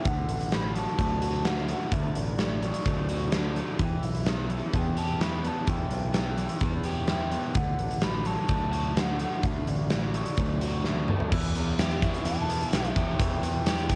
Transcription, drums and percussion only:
0.05 kick loud
0.05 closed hi-hat medium
0.29 closed hi-hat medium
0.41 closed hi-hat medium
0.52 snare loud
0.52 closed hi-hat medium
0.76 closed hi-hat medium
0.99 kick medium
0.99 closed hi-hat medium
1.22 closed hi-hat medium
1.45 snare loud
1.45 closed hi-hat medium
1.58 snare soft
1.69 closed hi-hat medium
1.92 kick loud
1.92 closed hi-hat medium
2.16 closed hi-hat medium
2.39 snare loud
2.39 closed hi-hat medium
2.63 closed hi-hat medium
2.74 closed hi-hat medium
2.86 kick loud
2.86 closed hi-hat medium
3.09 closed hi-hat medium
3.32 snare loud
3.32 closed hi-hat medium
3.56 closed hi-hat medium
3.79 kick medium
3.79 closed hi-hat medium
4.03 closed hi-hat medium
4.15 closed hi-hat medium
4.26 snare loud
4.26 closed hi-hat medium
4.50 closed hi-hat medium
4.73 kick loud
4.73 closed hi-hat medium
4.97 closed hi-hat medium
5.21 snare loud
5.21 closed hi-hat medium
5.44 closed hi-hat medium
5.67 kick loud
5.67 closed hi-hat medium
5.91 closed hi-hat medium
6.14 snare loud
6.14 closed hi-hat medium
6.38 closed hi-hat medium
6.49 closed hi-hat medium
6.61 kick loud
6.61 closed hi-hat medium
6.84 closed hi-hat medium
7.08 snare loud
7.08 closed hi-hat medium
7.32 closed hi-hat medium
7.55 kick loud
7.55 closed hi-hat medium
7.79 closed hi-hat medium
7.91 closed hi-hat medium
8.02 snare loud
8.02 closed hi-hat medium
8.25 closed hi-hat medium
8.49 kick loud
8.49 closed hi-hat medium
8.73 closed hi-hat medium
8.97 snare loud
8.97 closed hi-hat medium
9.20 closed hi-hat medium
9.43 kick loud
9.43 closed hi-hat medium
9.67 closed hi-hat medium
9.90 snare loud
9.90 closed hi-hat medium
10.14 closed hi-hat medium
10.26 closed hi-hat medium
10.37 kick loud
10.37 closed hi-hat medium
10.61 closed hi-hat medium
10.84 snare medium
10.96 high tom medium
11.08 mid tom medium
11.20 floor tom medium
11.32 kick loud
11.32 crash loud
11.44 closed hi-hat soft
11.55 closed hi-hat medium
11.79 snare loud
11.79 closed hi-hat loud
11.91 closed hi-hat soft
12.02 kick medium
12.02 closed hi-hat medium
12.14 closed hi-hat soft
12.25 closed hi-hat medium
12.50 closed hi-hat medium
12.61 closed hi-hat medium
12.73 snare loud
12.73 closed hi-hat loud
12.85 closed hi-hat soft
12.96 kick medium
12.96 closed hi-hat medium
13.19 kick loud
13.19 closed hi-hat loud
13.43 closed hi-hat medium
13.66 snare loud
13.66 closed hi-hat loud
13.78 closed hi-hat medium
13.89 kick medium
13.89 closed hi-hat medium

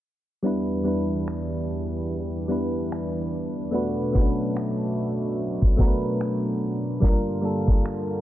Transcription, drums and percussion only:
1.28 finger snap loud
2.92 finger snap medium
4.15 kick medium
4.57 finger snap loud
5.62 kick medium
5.79 kick medium
6.21 finger snap medium
7.02 kick loud
7.68 kick medium
7.86 finger snap loud

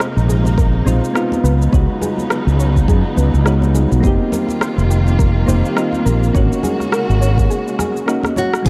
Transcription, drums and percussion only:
0.00 cross-stick loud
0.00 shaker soft
0.18 shaker soft
0.30 shaker medium
0.45 high conga medium
0.45 shaker soft
0.58 kick loud
0.58 shaker soft
0.86 high conga medium
0.86 shaker medium
1.04 shaker soft
1.15 cross-stick medium
1.15 shaker soft
1.32 high conga medium
1.32 shaker soft
1.45 shaker medium
1.62 shaker soft
1.72 kick loud
1.72 high conga medium
1.72 shaker soft
2.02 low conga medium
2.02 shaker medium
2.18 high conga medium
2.18 shaker soft
2.30 cross-stick medium
2.30 shaker soft
2.48 shaker soft
2.60 shaker medium
2.76 kick medium
2.76 high conga medium
2.76 shaker soft
2.88 kick loud
2.88 shaker soft
3.17 high conga medium
3.17 low conga medium
3.17 shaker medium
3.34 shaker soft
3.46 cross-stick medium
3.46 shaker soft
3.62 high conga medium
3.62 shaker soft
3.75 low conga medium
3.75 shaker medium
3.92 shaker soft
4.03 kick loud
4.03 high conga medium
4.03 shaker soft
4.32 low conga medium
4.32 shaker medium
4.49 high conga medium
4.49 shaker soft
4.61 cross-stick medium
4.61 shaker soft
4.79 shaker soft
4.91 shaker medium
5.07 high conga medium
5.07 shaker soft
5.19 kick loud
5.19 shaker soft
5.47 high conga medium
5.47 shaker medium
5.65 shaker soft
5.77 cross-stick medium
5.77 shaker soft
5.93 high conga medium
5.93 shaker soft
6.06 shaker medium
6.23 shaker soft
6.35 kick loud
6.35 high conga medium
6.35 shaker soft
6.52 shaker soft
6.63 low conga medium
6.63 shaker medium
6.80 cross-stick soft
6.80 high conga medium
6.80 shaker soft
6.92 cross-stick medium
6.92 shaker soft
7.10 shaker soft
7.22 shaker medium
7.38 kick medium
7.38 high conga medium
7.38 shaker soft
7.51 shaker soft
7.68 shaker soft
7.79 cross-stick medium
7.79 high conga medium
7.79 low conga medium
7.79 shaker medium
7.97 shaker soft
8.08 cross-stick medium
8.08 shaker soft
8.23 cross-stick medium
8.23 high conga medium
8.23 shaker soft
8.36 low conga medium
8.36 shaker medium
8.54 cross-stick medium
8.54 shaker soft
8.65 kick loud
8.65 closed hi-hat medium
8.65 high conga medium

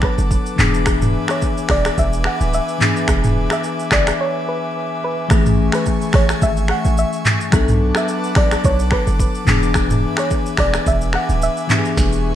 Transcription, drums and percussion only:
0.02 finger snap medium
0.02 kick loud
0.02 cross-stick medium
0.18 shaker medium
0.31 kick loud
0.31 shaker medium
0.46 shaker medium
0.59 clap loud
0.59 mid tom loud
0.59 shaker medium
0.74 shaker medium
0.86 finger snap medium
0.86 kick loud
0.86 cross-stick loud
0.86 shaker medium
1.02 mid tom loud
1.02 shaker medium
1.28 finger snap medium
1.28 cross-stick loud
1.28 shaker soft
1.42 kick medium
1.42 shaker medium
1.57 shaker medium
1.69 finger snap medium
1.69 kick loud
1.69 cross-stick loud
1.69 open hi-hat medium
1.85 finger snap medium
1.85 cross-stick loud
1.85 shaker medium
1.98 kick medium
1.98 shaker medium
2.13 shaker medium
2.24 finger snap medium
2.24 cross-stick medium
2.41 shaker medium
2.53 shaker medium
2.68 shaker medium
2.81 clap loud
2.81 mid tom medium
2.81 shaker medium
2.96 shaker medium
3.08 finger snap medium
3.08 kick loud
3.08 cross-stick loud
3.08 shaker medium
3.24 mid tom loud
3.24 shaker medium
3.50 finger snap medium
3.50 cross-stick loud
3.50 shaker soft
3.64 shaker medium
3.79 shaker medium
3.91 finger snap medium
3.91 kick loud
3.91 cross-stick loud
3.91 clap loud
3.91 open hi-hat medium
3.91 shaker soft
4.07 finger snap medium
4.07 cross-stick loud
4.07 shaker medium
5.30 finger snap medium
5.30 kick loud
5.30 cross-stick loud
5.30 shaker medium
5.46 mid tom loud
5.46 shaker medium
5.72 finger snap medium
5.72 cross-stick loud
5.72 shaker medium
5.86 kick medium
5.86 shaker medium
6.02 shaker medium
6.13 finger snap medium
6.13 kick medium
6.13 cross-stick loud
6.13 open hi-hat medium
6.29 finger snap medium
6.29 cross-stick loud
6.29 shaker medium
6.42 kick medium
6.42 shaker medium
6.57 shaker medium
6.68 finger snap medium
6.68 cross-stick medium
6.85 shaker medium
6.97 shaker medium
7.13 shaker medium
7.25 clap loud
7.25 mid tom medium
7.25 shaker medium
7.41 shaker medium
7.52 finger snap medium
7.52 kick loud
7.52 cross-stick loud
7.52 shaker medium
7.68 mid tom loud
7.68 shaker medium
7.95 finger snap medium
7.95 cross-stick loud
7.95 shaker medium
8.08 shaker medium
8.24 shaker medium
8.35 finger snap medium
8.35 kick medium
8.35 cross-stick loud
8.35 open hi-hat medium
8.51 finger snap medium
8.51 cross-stick medium
8.51 shaker medium
8.64 kick medium
8.64 shaker medium
8.79 shaker medium
8.91 finger snap medium
8.91 kick medium
8.91 cross-stick medium
9.07 shaker medium
9.19 kick loud
9.19 shaker medium
9.35 shaker medium
9.47 clap loud
9.47 mid tom loud
9.47 shaker medium
9.63 shaker medium
9.74 finger snap medium
9.74 kick loud
9.74 cross-stick loud
9.74 shaker medium
9.90 mid tom loud
9.90 shaker medium
10.17 finger snap medium
10.17 cross-stick loud
10.17 shaker medium
10.30 kick medium
10.30 shaker medium
10.46 shaker medium
10.57 finger snap medium
10.57 kick medium
10.57 cross-stick loud
10.57 open hi-hat medium
10.74 finger snap medium
10.74 cross-stick loud
10.74 shaker medium
10.86 kick medium
10.86 shaker medium
11.01 shaker medium
11.13 finger snap medium
11.13 cross-stick medium
11.29 shaker medium
11.42 shaker medium
11.57 shaker medium
11.70 clap loud
11.70 mid tom medium
11.70 shaker medium
11.85 shaker medium
11.97 kick loud
11.97 snare medium
11.97 shaker medium
12.13 shaker medium

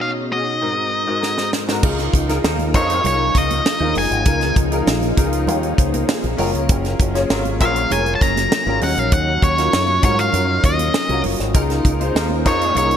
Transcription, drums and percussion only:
1.23 snare medium
1.38 snare medium
1.53 snare medium
1.69 snare medium
1.83 kick loud
1.83 crash loud
1.83 muted conga soft
1.98 snare soft
1.98 closed hi-hat soft
2.14 kick medium
2.14 closed hi-hat medium
2.14 muted conga soft
2.29 snare soft
2.29 closed hi-hat soft
2.44 snare loud
2.59 closed hi-hat soft
2.59 high conga medium
2.74 kick loud
2.74 closed hi-hat medium
2.74 muted conga soft
2.90 closed hi-hat medium
3.04 closed hi-hat medium
3.04 low conga medium
3.35 kick medium
3.35 closed hi-hat medium
3.35 muted conga soft
3.50 closed hi-hat medium
3.50 high conga medium
3.66 snare loud
3.66 muted conga soft
3.66 high conga soft
3.81 high conga medium
3.95 open hi-hat medium
3.95 low conga medium
4.12 closed hi-hat soft
4.25 kick loud
4.25 closed hi-hat medium
4.25 muted conga soft
4.41 snare soft
4.41 closed hi-hat soft
4.56 kick loud
4.56 closed hi-hat medium
4.56 muted conga soft
4.72 closed hi-hat soft
4.87 snare loud
4.87 muted conga soft
5.01 closed hi-hat soft
5.01 high conga medium
5.17 kick medium
5.17 closed hi-hat medium
5.17 muted conga soft
5.33 closed hi-hat medium
5.47 closed hi-hat medium
5.47 muted conga soft
5.47 low conga medium
5.63 closed hi-hat soft
5.78 kick loud
5.78 closed hi-hat medium
5.78 muted conga soft
5.94 closed hi-hat medium
5.94 high conga medium
6.09 snare loud
6.09 muted conga soft
6.09 high conga soft
6.24 closed hi-hat soft
6.24 high conga medium
6.38 open hi-hat medium
6.38 low conga medium
6.55 closed hi-hat soft
6.69 kick loud
6.69 closed hi-hat medium
6.69 muted conga soft
6.85 snare soft
6.85 closed hi-hat soft
7.00 kick loud
7.00 closed hi-hat medium
7.15 snare soft
7.15 closed hi-hat soft
7.30 snare loud
7.45 closed hi-hat soft
7.45 high conga medium
7.60 kick medium
7.60 closed hi-hat medium
7.76 closed hi-hat medium
7.90 closed hi-hat medium
7.90 muted conga soft
7.90 low conga medium
8.06 closed hi-hat soft
8.21 kick medium
8.21 closed hi-hat medium
8.37 snare soft
8.37 closed hi-hat medium
8.37 high conga medium
8.52 snare loud
8.52 muted conga soft
8.52 high conga soft
8.68 high conga medium
8.81 open hi-hat medium
8.81 muted conga soft
8.81 low conga medium
8.97 closed hi-hat medium
9.12 kick loud
9.12 closed hi-hat medium
9.42 kick loud
9.42 closed hi-hat medium
9.58 snare soft
9.58 closed hi-hat soft
9.73 snare loud
9.73 muted conga soft
9.88 high conga medium
10.02 kick loud
10.02 closed hi-hat medium
10.02 low conga medium
10.19 closed hi-hat medium
10.32 closed hi-hat medium
10.32 low conga medium
10.64 kick medium
10.64 closed hi-hat medium
10.79 closed hi-hat medium
10.79 high conga medium
10.94 snare loud
10.94 muted conga soft
10.94 high conga medium
11.09 closed hi-hat soft
11.09 high conga medium
11.24 open hi-hat medium
11.24 muted conga soft
11.24 low conga medium
11.40 snare soft
11.40 closed hi-hat soft
11.54 kick loud
11.54 closed hi-hat loud
11.54 muted conga soft
11.70 snare soft
11.70 closed hi-hat soft
11.85 kick medium
11.85 closed hi-hat medium
12.01 closed hi-hat soft
12.16 snare loud
12.16 muted conga soft
12.30 high conga medium
12.46 kick medium
12.46 closed hi-hat medium
12.61 closed hi-hat medium
12.75 closed hi-hat medium
12.75 low conga medium
12.91 closed hi-hat soft

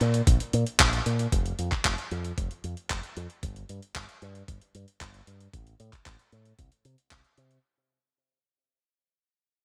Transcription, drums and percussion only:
0.01 closed hi-hat soft
0.14 closed hi-hat soft
0.27 kick loud
0.27 closed hi-hat medium
0.40 closed hi-hat soft
0.53 closed hi-hat medium
0.67 closed hi-hat soft
0.80 kick loud
0.80 clap loud
0.80 closed hi-hat medium
0.93 closed hi-hat soft
1.06 closed hi-hat medium
1.19 closed hi-hat soft
1.32 kick loud
1.32 closed hi-hat medium
1.46 closed hi-hat soft
1.59 closed hi-hat medium
1.72 kick medium
1.72 clap soft
1.72 closed hi-hat soft
1.85 kick loud
1.85 clap loud
1.85 closed hi-hat medium
1.98 closed hi-hat soft
2.11 closed hi-hat soft
2.25 closed hi-hat soft
2.38 kick loud
2.38 closed hi-hat medium
2.51 closed hi-hat soft
2.64 closed hi-hat medium
2.77 closed hi-hat soft
2.90 kick loud
2.90 clap loud
2.90 closed hi-hat medium
3.03 closed hi-hat soft
3.17 closed hi-hat medium
3.30 closed hi-hat soft
3.43 kick loud
3.43 closed hi-hat medium
3.56 closed hi-hat soft
3.69 closed hi-hat medium
3.82 closed hi-hat soft
3.96 kick loud
3.96 clap loud
3.96 closed hi-hat medium
4.09 closed hi-hat soft
4.22 closed hi-hat soft
4.35 closed hi-hat soft
4.48 kick loud
4.48 closed hi-hat medium
4.62 closed hi-hat soft
4.75 closed hi-hat medium
4.88 closed hi-hat soft
5.01 kick loud
5.01 clap loud
5.01 closed hi-hat medium
5.14 closed hi-hat soft
5.27 closed hi-hat medium
5.40 closed hi-hat soft
5.53 kick loud
5.53 closed hi-hat medium
5.67 closed hi-hat soft
5.80 closed hi-hat medium
5.93 kick medium
5.93 clap soft
5.93 closed hi-hat soft
6.06 kick loud
6.06 clap loud
6.06 closed hi-hat medium
6.19 closed hi-hat soft
6.32 closed hi-hat soft
6.45 closed hi-hat soft
6.59 kick loud
6.59 closed hi-hat medium
6.72 closed hi-hat soft
6.85 closed hi-hat medium
6.98 closed hi-hat soft
7.11 kick loud
7.11 clap loud
7.11 closed hi-hat medium
7.24 closed hi-hat soft
7.38 closed hi-hat medium
7.51 closed hi-hat soft

